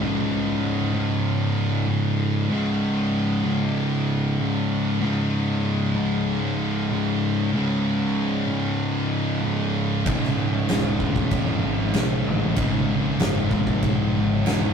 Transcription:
0.00 0.95 C#2 medium
0.00 0.92 G#2 loud
0.00 14.73 C#3 medium
0.00 0.92 C#3 loud
0.00 14.73 G#3 medium
0.00 14.73 D#4 loud
0.92 1.86 C#2 medium
0.92 1.86 G#2 medium
0.92 1.89 C#3 medium
1.87 2.49 C#2 medium
1.87 2.49 G#2 medium
1.87 2.51 C#3 medium
2.49 3.46 C#2 loud
2.49 3.43 G#2 loud
2.49 3.43 C#3 loud
3.44 4.38 C#2 medium
3.44 4.38 G#2 medium
3.44 4.40 C#3 medium
4.38 5.01 C#2 medium
4.38 5.00 G#2 medium
4.38 5.04 C#3 medium
5.02 5.98 C#2 medium
5.02 5.95 G#2 loud
5.02 5.95 C#3 loud
5.96 6.90 C#2 medium
5.96 6.90 G#2 medium
5.96 6.92 C#3 loud
6.90 7.52 C#2 medium
6.90 7.52 G#2 medium
6.90 7.55 C#3 medium
7.53 8.50 C#2 loud
7.53 8.46 G#2 loud
7.53 8.47 C#3 loud
8.48 9.41 C#2 medium
8.48 9.41 G#2 medium
8.48 9.44 C#3 medium
9.42 10.05 C#2 medium
9.42 10.04 G#2 medium
9.42 10.07 C#3 medium
10.05 10.61 C#1 loud
10.05 11.02 C#2 medium
10.05 10.99 G#2 loud
10.05 11.00 C#3 loud
10.05 kick loud
10.05 crash medium
10.24 snare soft
10.69 11.24 E1 medium
10.69 snare loud
10.69 crash medium
11.00 11.93 C#2 medium
11.00 11.93 G#2 medium
11.00 11.96 C#3 medium
11.00 kick medium
11.16 kick medium
11.31 11.59 E1 loud
11.31 kick loud
11.31 crash medium
11.64 11.91 G#1 medium
11.93 12.23 B1 loud
11.93 12.56 C#2 medium
11.93 12.56 G#2 medium
11.93 12.59 C#3 medium
11.93 snare loud
11.93 crash medium
12.26 12.53 A1 loud
12.56 13.12 G#1 loud
12.56 13.53 C#2 loud
12.56 13.51 G#2 loud
12.56 13.50 C#3 loud
12.56 kick loud
12.56 crash medium
13.20 13.48 F#1 loud
13.20 snare loud
13.20 crash medium
13.50 13.79 G#1 medium
13.50 14.45 C#2 medium
13.50 14.44 G#2 medium
13.50 14.47 C#3 medium
13.50 kick loud
13.67 kick medium
13.83 14.11 B1 loud
13.83 kick medium
13.83 crash medium
14.15 14.43 G#1 medium
14.45 14.73 E1 loud
14.45 14.73 C#2 medium
14.45 14.73 G#2 medium
14.45 14.73 C#3 medium
14.45 snare loud
14.45 crash medium

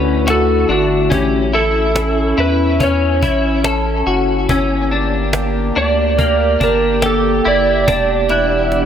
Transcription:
0.00 0.66 D2 loud
0.00 1.08 D3 medium
0.00 1.08 A3 medium
0.00 0.27 C#4 medium
0.00 4.45 E4 medium
0.00 1.08 F#4 loud
0.00 0.29 B4 medium
0.27 0.69 F#4 medium
0.27 0.72 A4 loud
0.27 cajon slap loud
0.69 1.09 G1 medium
0.69 1.10 D4 medium
0.69 1.13 F#4 medium
0.69 cajon slap soft
1.10 2.34 A1 loud
1.10 1.53 C#4 medium
1.10 4.46 C#4 medium
1.10 1.54 G4 medium
1.10 cajon bass loud
1.53 2.36 E4 medium
1.53 2.41 A4 loud
1.53 cajon slap soft
1.96 cajon slap loud
2.38 3.24 E2 medium
2.38 2.80 E4 medium
2.38 2.83 B4 loud
2.38 cajon slap soft
2.80 3.23 C#4 medium
2.80 3.62 C#5 loud
2.80 cajon bass medium
3.22 4.03 A1 loud
3.22 3.64 E4 medium
3.22 cajon bass medium
3.64 4.06 A4 medium
3.64 cajon slap loud
4.07 4.47 F#1 loud
4.07 4.49 F#4 medium
4.07 cajon slap soft
4.49 5.72 G1 loud
4.49 7.85 A#3 medium
4.49 4.91 C#4 medium
4.49 8.86 G4 loud
4.49 6.51 E6 medium
4.49 cajon bass loud
4.91 5.75 D4 medium
4.91 cajon slap soft
5.33 cajon slap loud
5.75 6.57 D2 medium
5.75 6.19 D4 medium
5.75 6.64 D5 loud
5.75 cajon slap soft
6.18 6.61 A#3 medium
6.18 cajon bass medium
6.60 7.41 G1 loud
6.60 7.03 D4 medium
6.60 7.05 A#4 medium
6.60 cajon bass medium
7.02 7.45 G4 medium
7.02 7.48 A4 medium
7.02 cajon slap loud
7.45 7.86 F#1 loud
7.45 7.88 E4 medium
7.45 8.86 D5 loud
7.45 cajon slap soft
7.88 8.86 E1 loud
7.88 8.86 E3 medium
7.88 8.86 B3 medium
7.88 8.30 D4 medium
7.88 8.86 D4 medium
7.88 8.86 F#5 medium
7.88 cajon bass loud
7.88 cajon slap medium
8.29 8.86 E4 medium
8.29 8.86 F#6 medium
8.29 cajon slap medium
8.72 cajon slap medium

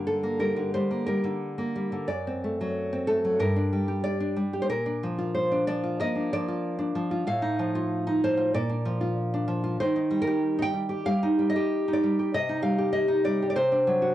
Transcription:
0.00 0.69 G2 soft
0.00 0.55 D3 soft
0.00 0.38 G3 soft
0.00 0.22 A#3 soft
0.07 0.38 A4 medium
0.23 0.89 A#3 soft
0.39 0.74 G3 soft
0.39 0.71 A#4 medium
0.56 1.23 D3 soft
0.74 1.07 G3 soft
0.74 1.05 C5 medium
0.91 1.57 A#3 soft
1.06 1.74 G3 soft
1.06 2.03 A#4 medium
1.24 1.91 D3 soft
1.58 2.08 A#3 soft
1.76 2.08 G3 soft
1.92 2.08 D3 soft
2.08 3.35 F#2 soft
2.08 3.03 D5 medium
2.27 2.91 C4 soft
2.44 3.07 A3 soft
2.61 3.23 F#3 soft
2.93 3.40 C4 soft
3.07 3.39 A3 soft
3.07 3.38 A4 medium
3.25 3.40 F#3 soft
3.39 4.66 G2 soft
3.39 4.01 A#4 medium
3.56 4.19 D4 soft
3.73 4.35 G3 soft
3.88 4.52 G4 soft
4.04 4.60 D5 medium
4.20 4.70 D4 soft
4.36 4.70 G3 soft
4.53 4.70 G4 soft
4.62 4.69 C5 medium
4.70 5.97 A#2 soft
4.70 5.33 A#4 medium
4.86 5.50 D4 soft
5.03 5.67 F3 soft
5.19 5.82 F4 soft
5.35 5.66 C5 medium
5.52 6.14 D4 soft
5.67 6.32 F3 soft
5.67 5.99 D5 medium
5.84 6.47 F4 soft
6.00 6.94 A#3 soft
6.00 6.31 D#5 medium
6.15 6.77 D4 soft
6.33 6.94 F3 soft
6.33 7.24 D5 medium
6.48 7.10 F4 soft
6.79 7.27 D4 soft
6.95 7.26 F3 soft
7.11 7.27 F4 soft
7.27 8.51 A2 soft
7.27 8.20 F5 medium
7.42 8.06 D#4 soft
7.59 8.23 F3 soft
7.75 8.36 F4 soft
8.07 8.55 D#4 soft
8.24 8.54 F3 soft
8.24 8.54 C5 medium
8.37 8.54 F4 soft
8.55 9.76 A#2 medium
8.55 9.15 D5 medium
8.70 9.33 D4 soft
8.86 9.47 F3 soft
9.01 9.63 F4 soft
9.34 9.80 D4 soft
9.48 9.80 F3 soft
9.64 9.80 F4 soft
9.80 11.03 D#3 soft
9.80 10.20 C5 medium
9.96 10.57 D#4 soft
10.11 10.72 G3 soft
10.22 10.62 A#4 medium
10.27 10.88 G4 soft
10.58 10.73 D#4 soft
10.58 11.04 G5 medium
10.73 11.04 G3 soft
10.89 11.54 G4 soft
11.05 11.37 G3 soft
11.05 11.46 F5 medium
11.23 11.87 D#4 soft
11.39 12.02 G3 soft
11.49 11.88 D#5 medium
11.56 12.18 G4 soft
11.88 12.32 D#4 soft
11.93 12.30 D5 medium
12.03 12.32 G3 soft
12.19 12.32 G4 soft
12.34 13.53 C3 soft
12.34 12.61 D#5 medium
12.49 13.07 D#4 soft
12.62 13.23 G3 soft
12.62 12.91 F5 medium
12.78 13.41 G4 soft
12.93 13.22 D#5 medium
13.08 13.55 D#4 soft
13.24 13.55 G3 soft
13.24 13.48 D5 medium
13.43 13.56 G4 soft
13.50 13.56 D5 soft
13.56 14.14 C3 soft
13.56 14.14 C5 medium
13.72 14.14 D4 soft
13.87 14.14 F#3 soft
14.02 14.14 F#4 soft

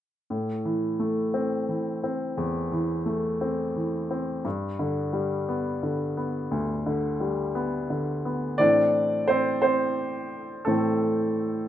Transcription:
0.30 2.34 A2 soft
0.65 1.67 E3 soft
1.00 2.34 A3 soft
1.34 2.02 C4 soft
1.69 2.71 E3 soft
2.04 3.38 C4 soft
2.37 4.41 E2 soft
2.72 3.74 E3 soft
3.06 4.41 A3 soft
3.41 4.09 C4 soft
3.76 4.43 E3 soft
4.11 4.44 C4 soft
4.45 6.48 G2 soft
4.79 5.81 D3 soft
5.13 6.48 G3 soft
5.49 6.16 B3 soft
5.83 6.85 D3 soft
6.17 7.52 B3 soft
6.51 8.55 D2 soft
6.86 7.89 D3 soft
7.20 8.55 G3 soft
7.55 8.24 B3 soft
7.90 8.57 D3 soft
8.25 8.59 B3 soft
8.58 10.62 A2 soft
8.58 10.63 E3 soft
8.58 9.29 C4 soft
8.58 9.25 D4 medium
8.58 9.30 D5 medium
9.28 9.62 C4 medium
9.28 9.60 C5 medium
9.62 10.63 C4 soft
9.62 10.69 C5 medium
10.65 11.68 A2 soft
10.65 11.68 E3 soft
10.65 11.68 A3 soft
10.65 11.68 C4 soft
10.65 11.68 A4 medium

